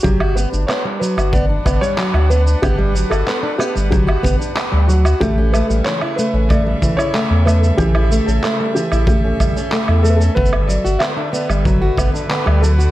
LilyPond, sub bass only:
\new Staff \with { instrumentName = "Sub bass" } { \clef bass \time 4/4 \key g \lydian \tempo 4 = 93 g,,8. g,,16 r8. g,,8. g,,16 r8 d,8. | g,,8. g,,16 r8. g,,8. g,,16 r8 d,8. | a,,8. a,,16 r8. a,,8. a,,16 r8 e,8. | a,,8. a,,16 r8. a,,8. a,,16 r8 e,8. |
g,,8. g,,16 r8. g,,8. g,,16 r8 d,8. | }